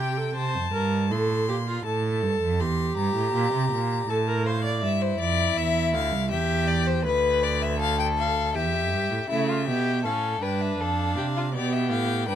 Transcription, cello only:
0.00 0.34 C3 medium
0.35 0.56 C3 medium
0.54 0.73 F2 medium
0.73 1.12 G2 medium
1.11 1.50 A2 medium
1.48 1.85 A#2 medium
1.86 2.24 A2 medium
2.23 2.41 G2 medium
2.41 2.61 F2 medium
2.60 2.96 E2 medium
2.97 3.15 G2 medium
3.16 3.34 A2 medium
3.34 3.53 A#2 medium
3.53 3.71 C3 medium
3.72 4.08 A#2 medium
4.09 4.84 A2 medium
4.83 5.19 G2 medium
5.19 5.56 F2 medium
5.56 5.95 E2 medium
5.93 6.14 D2 medium
6.12 6.32 C2 medium
6.31 7.06 E2 medium
7.05 8.56 D2 medium
8.54 8.74 E2 medium
8.73 8.94 F2 medium
8.92 9.10 G2 medium
9.11 9.18 A2 medium
9.30 9.69 C#3 medium
9.67 10.06 B2 medium
10.04 10.42 A2 medium
10.42 10.78 G2 medium
10.79 11.18 F2 medium
11.17 11.55 C3 medium
11.54 11.92 B2 medium
11.91 12.29 A2 medium
12.28 12.35 G2 medium

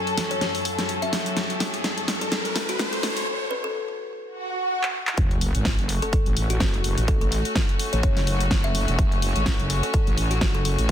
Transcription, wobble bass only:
5.18 5.53 F#1 loud
5.55 5.76 G#1 loud
5.79 6.00 F#1 medium
6.26 6.59 A1 medium
6.60 6.95 F#1 medium
6.98 7.43 A1 loud
7.93 8.02 A1 loud
8.03 8.49 F#1 medium
8.51 8.86 F#1 medium
8.88 8.97 E1 loud
8.99 9.34 F#1 loud
9.36 9.57 G#1 loud
9.59 9.81 F#1 loud
10.07 10.40 A1 medium
10.41 10.76 F#1 loud
10.78 10.91 A1 loud

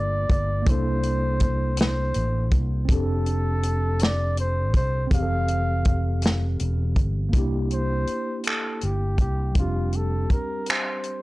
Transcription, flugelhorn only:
0.00 0.71 D5 loud
0.70 1.79 C5 loud
1.81 2.59 C5 loud
2.91 4.04 A4 loud
4.03 4.38 D5 loud
4.40 4.73 C5 loud
4.77 5.10 C5 loud
5.15 6.57 F5 loud
7.73 8.42 C5 loud
8.47 8.86 A4 medium
8.85 9.20 G4 medium
9.21 9.54 G4 medium
9.58 9.98 F4 medium
9.96 10.34 A4 medium
10.32 10.71 A#4 medium
10.70 11.22 C5 medium

